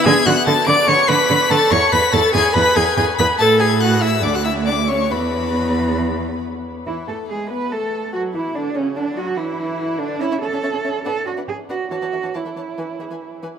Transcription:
<<
  \new Staff \with { instrumentName = "Violin" } { \time 4/4 \key a \major \tempo 4 = 142 gis'''8 fis'''8 a'''8 d''''8 cis''''8 b'''4 a'''8 | cis''''8 b'''8 a'''8 gis'''8 b'''8 gis'''8 gis'''8 b'''8 | a'''8 gis'''8 fis'''8 e'''8 d'''16 fis'''16 e'''8 d'''8 cis'''8 | b''2. r4 |
e'8 a'8 gis'8 b'8 a'4 fis'8 e'8 | d'8 cis'8 d'8 fis'8 e'4. d'8 | e''16 e''16 cis''16 e''16 e''16 cis''16 e''16 r16 fis''16 r16 d''16 fis''16 r8 fis''16 r16 | a''16 a''16 e''16 a''16 a''16 e''16 a''16 r16 gis''16 r16 e''16 gis''16 r8 gis''16 r16 | }
  \new Staff \with { instrumentName = "Violin" } { \time 4/4 \key a \major gis''8 fis''8 a''8 d'''8 cis'''8 b''4 a''8 | cis'''8 b''8 a''8 gis''8 b''8 gis''8 gis''8 b''8 | a''8 gis''8 fis''8 e''8 d''16 fis''16 e''8 d''8 cis''8 | b'2. r4 |
e'8 a'8 gis'8 b'8 a'4 fis'8 e'8 | d'8 cis'8 d'8 fis'8 e'4. d'8 | cis''16 cis''16 a'16 cis''16 cis''16 a'16 cis''16 r16 b'16 r16 a'16 b'16 r8 b'16 r16 | cis''16 cis''16 a'16 cis''16 cis''16 a'16 cis''16 r16 b'16 r16 gis'16 b'16 r8 b'16 r16 | }
  \new Staff \with { instrumentName = "Cello" } { \time 4/4 \key a \major d8 d8 d8 d8 d8 d8 d8 d8 | e,8 e,8 e,8 e,8 e,8 e,8 e,8 e,8 | a,2 d,2 | e,2.~ e,8 r8 |
e'8 a'8 gis'8 b'8 a'4 fis'8 e'8 | d'8 cis'8 d'8 fis'8 e'4. d'8 | e'8 a'4. a'8 fis'8 gis'8 fis'8 | fis'4 e'2~ e'8 r8 | }
  \new Staff \with { instrumentName = "Viola" } { \time 4/4 \key a \major gis'8 fis'8 a'8 d''8 cis''8 b'4 a'8 | cis''8 b'8 a'8 gis'8 b'8 gis'8 gis'8 b'8 | a'8 gis'8 fis'8 e'8 d'16 fis'16 e'8 d'8 cis'8 | b2. r4 |
e8 a8 gis8 b8 a4 fis8 e8 | d8 cis8 d8 fis8 e4. d8 | cis'16 cis'16 cis'16 cis'16 cis'16 cis'16 cis'16 r16 d'16 r16 d'16 d'16 r8 d'16 r16 | e16 e16 e16 e16 e16 e16 e16 r16 e16 r16 e16 e16 r8 e16 r16 | }
>>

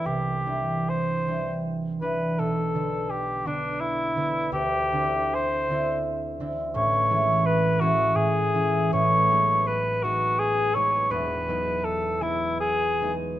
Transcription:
<<
  \new Staff \with { instrumentName = "Cor anglais" } { \time 3/4 \key d \mixolydian \tempo 4 = 82 g'4 c''4 r8 b'8 | a'4 g'8 d'8 e'4 | g'4 c''4 r4 | \key e \major cis''4 b'8 fis'8 gis'4 |
cis''4 b'8 fis'8 gis'8 cis''8 | b'4 a'8 e'8 gis'8 r8 | }
  \new Staff \with { instrumentName = "Harp" } { \clef bass \time 3/4 \key d \mixolydian <c, g d' e'>8 <e g d'>4 <e g d'>4 <e g d'>8 | b,,8 <d b d'>4 <d b d'>4 <d b d'>8 | d,8 <d c' d' e'>4 <d c' d' e'>4 <d c' d' e'>8 | \key e \major <a,, a,>8 <e gis cis' e'>4 <e gis cis' e'>8 a,8 <e gis cis' e'>8 |
<a,, a,>8 <fis gis b dis'>4 <fis gis b dis'>4 <fis gis b dis'>8 | <e,, e,>8 <fis gis b dis'>4 <fis gis b dis'>4 <fis gis b dis'>8 | }
>>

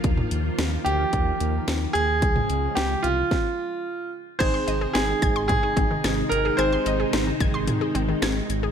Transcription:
<<
  \new Staff \with { instrumentName = "Grand piano" } { \time 4/4 \key aes \lydian \tempo 4 = 110 r4. g'2 aes'8~ | aes'4 g'8 f'2 r8 | c''4 aes'4 aes'4. bes'8 | c''2. r4 | }
  \new Staff \with { instrumentName = "Synth arpeggio sound" } { \time 4/4 \key aes \lydian r1 | r1 | aes'''16 c'''16 ees''16 aes'16 c'16 ees16 aes'''16 c'''16 r16 aes'16 c'16 ees16 aes'''16 r8 aes'16 | aes'''16 c'''16 ees''16 aes'16 c'16 ees16 aes'''16 c'''16 r16 aes'16 c'16 ees16 aes'''16 r8 aes'16 | }
  \new Staff \with { instrumentName = "Synth keys" } { \time 4/4 \key aes \lydian r1 | r1 | <c' ees' aes'>1 | <c' ees' aes'>1 | }
  \new Staff \with { instrumentName = "String machine" } { \clef bass \time 4/4 \key aes \lydian << { f'1~ | f'2 r2 | ees'1~ | ees'1 | } \\ { <ees f bes>1 | <des f aes>2 r2 | <c ees aes>1~ | <c ees aes>1 | } >> }
  \new Staff \with { instrumentName = "Analog synth bass" } { \clef bass \time 4/4 \key aes \lydian ees,8 ees,8 ees,8 d,8 ees,8 ees,8 ees,8 ees,8 | des,8 des,8 des,8 c,8 r2 | aes,,8 aes,,8 aes,,8 aes,,8. r16 aes,,8 aes,,8 aes,,8 | aes,,8 aes,,8 aes,,8 aes,,8. r16 aes,,8 aes,,8 aes,,8 | }
  \new DrumStaff \with { instrumentName = "Drums" } \drummode { \time 4/4 <hh bd>16 toml16 hh8 <hh sn>8 hh8 <hh bd>8 hh8 <hh sn>8 hh8 | <hh bd>16 toml16 hh8 <hh sn>8 hh8 <bd sn>4 r4 | <cymc hh bd>8 hh8 <hh sn>8 <hh bd>8 <hh bd toml>8 <hh bd>8 <hh sn>8 hh8 | hh8 hh8 <hh sn>8 <hh bd>8 <hh toml>8 hh8 <hh sn>8 hh8 | }
>>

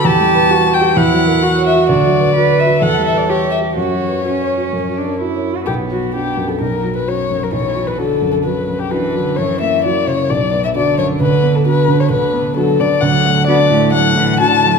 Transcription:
<<
  \new Staff \with { instrumentName = "Violin" } { \time 4/4 \key b \minor \tempo 4 = 130 a''4. g''8 fis''4. e''8 | d''4. e''8 fis''8 e''16 d''16 cis''8 e''8 | cis''2. r4 | g'8 fis'8 g'8. a'16 ais'8. b'16 cis''8. ais'16 |
cis''8. b'16 a'8. a'16 b'8. g'16 b'4 | cis''8 e''8 d''8 cis''8 d''8. e''16 d''8 cis''8 | b'8. a'16 b'8. cis''16 b'4 a'8 d''8 | \key d \major fis''4 d''4 fis''4 a''4 | }
  \new Staff \with { instrumentName = "Grand piano" } { \time 4/4 \key b \minor \tuplet 3/2 { e,8 g8 b'8 g'4 g'8 e,8 fis8 ais'8 fis'8 cis''8 fis'8 } | \tuplet 3/2 { d,8 fis8 b'8 fis'8 b'8 fis'8 e,8 g8 b'8 g'8 cis''8 g'8 } | \tuplet 3/2 { fis,8 fis8 b'8 fis'8 cis''8 fis'8 fis,8 fis8 ais'8 fis'8 cis''8 fis'8 } | b,,8 fis8 <d' fis'>8 fis,8 b,,8 fis8 <cis' fis'>8 fis,8 |
b,,8 fis8 <d' fis'>8 fis,8 fis8 fis,8 <d' fis'>8 fis8 | fis,8 ais8 <e' fis'>8 cis8 b,,8 b8 <d' fis'>8 fis,8 | d,8 b8 <d' fis'>8 d8 d,8 b8 <d' fis'>8 d8 | \key d \major d,8 a8 <d' fis'>8 a,8 a8 a,8 <d' fis'>8 a8 | }
  \new Staff \with { instrumentName = "Cello" } { \clef bass \time 4/4 \key b \minor g'4 fis'4 e'4 fis'4~ | fis'4 b'4 a'4 g'4 | fis'4 cis'4. d'8 e'8. fis'16 | b2 fis4 fis4 |
e4 d4 fis4 e8 d8 | e4 fis4 fis4 d4~ | d2 d4 fis4 | \key d \major fis4 b8 a8 fis8 e8 d8 fis8 | }
>>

